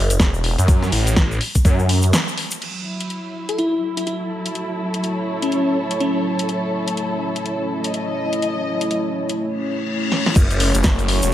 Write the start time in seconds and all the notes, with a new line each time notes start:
Already playing: F#1
0.10 closed hi-hat, shaker
0.20 E1, kick, snare, closed hi-hat, shaker
0.34 shaker
0.44 open hi-hat
0.58 F#2, closed hi-hat, shaker
0.68 kick, closed hi-hat, shaker
0.82 snare, shaker
0.92 A1, open hi-hat
1.07 closed hi-hat, shaker
1.16 A1, kick, snare, closed hi-hat, shaker
1.32 shaker
1.41 open hi-hat
1.55 kick, closed hi-hat, shaker
1.65 F#2, kick, closed hi-hat, shaker
1.79 shaker
1.89 open hi-hat
2.02 closed hi-hat, shaker
2.13 snare, closed hi-hat, shaker
2.28 shaker
2.38 open hi-hat
2.51 closed hi-hat, shaker
2.62 F#3 A3 C#4 F#4 C#5, closed hi-hat, crash
2.83 E4
3.00 closed hi-hat
3.10 closed hi-hat
3.49 A4, closed hi-hat
3.58 E4, closed hi-hat
3.97 E4, closed hi-hat
4.07 E4 A4, closed hi-hat
4.46 closed hi-hat
4.55 closed hi-hat
4.81 C#5
4.94 closed hi-hat
5.04 closed hi-hat
5.42 C#4, closed hi-hat
5.52 closed hi-hat
5.91 closed hi-hat
6.00 C#4, closed hi-hat
6.39 closed hi-hat
6.49 E4, closed hi-hat
6.88 closed hi-hat
6.97 closed hi-hat
7.36 closed hi-hat
7.46 closed hi-hat
7.81 D#5, closed hi-hat
7.94 closed hi-hat
8.33 closed hi-hat
8.42 closed hi-hat
8.81 closed hi-hat
8.91 closed hi-hat
9.29 closed hi-hat
9.39 reverse cymbal
10.12 snare
10.26 snare
10.36 F#1 A3 C#4 F#4 C#5, kick, crash, shaker
10.50 F#1, closed hi-hat, shaker
10.60 open hi-hat
10.75 F#1, closed hi-hat, shaker
10.84 kick, snare, shaker
10.89 C#5
10.99 closed hi-hat, shaker
11.08 open hi-hat
11.22 E1, closed hi-hat, shaker